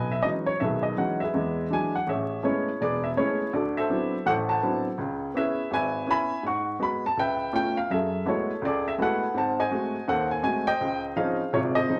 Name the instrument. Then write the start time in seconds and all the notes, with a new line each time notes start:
upright piano
Already playing: B1 B4 D#5 G#5
0.12 E5
0.23 E3 F#3 G#3 C#4 D#4 D#5
0.46 C#5
0.60 B1 D#3 G#4 B4 E5
0.83 D#5
0.97 E3 F#3 G#3 C#4 D#4 F#5
1.20 G#4 B4 E5
1.34 E2 G#3
1.70 E3 F#3 G#3 D4 G#5
1.95 F#5
2.07 A1 G#4 C#5 E5
2.43 G#3 A3 B3 C#4 E4 G#4 C#5
2.81 E1 G#4 B4 D5
3.04 E5
3.17 G#3 A3 B3 C#4 E4 G#4 C#5
3.53 D2 F#4 A4 D5
3.77 A4 C5 E5
3.90 F#3 B3 C4 D4 E4
4.26 A1 A2 A4 C5 F#5
4.49 C5 F#5 A5
4.62 F#3 B3 C4 D4 E4
4.98 C#2 C#3
5.34 B3 C#4 E4 G#4 B4 E5
5.71 G#1 B4 G#5
5.75 E5
6.07 B3 C#4 E4 E5 G#5 B5
6.43 G#2 C#6
6.47 F#5
6.79 G#3 B3 F#4 B5
7.06 A5
7.17 C#2 B4 E5 G5
7.53 A3 B3 C#4 F4 G5
7.77 F5
7.90 F#2 G#4 A4 E5
8.26 G#3 A3 B3 E4 F#4 A4 C#5
8.62 C#2 A4 D5
8.66 G#4
8.88 E5
8.98 G#3 A3 B3 E4 F#4 A4 F#5
9.03 B4
9.34 G#2 C4 C5 F#5 A5
9.60 C5 D#5 G#5
9.71 G#3 A3 C4 F#4
10.08 D#2 A4 C5 F#5
10.31 G#5
10.43 G#3 A3 C4 F#4 G#5
10.67 C5 D#5 G5
10.81 C#2
11.16 F3 C4 C#4 D#4 G#4 C5 F5
11.53 G#1 C3 F4 G#4 C#5
11.65 D5
11.75 G#4 C5 D#5
11.89 F3 C4 C#4 D#4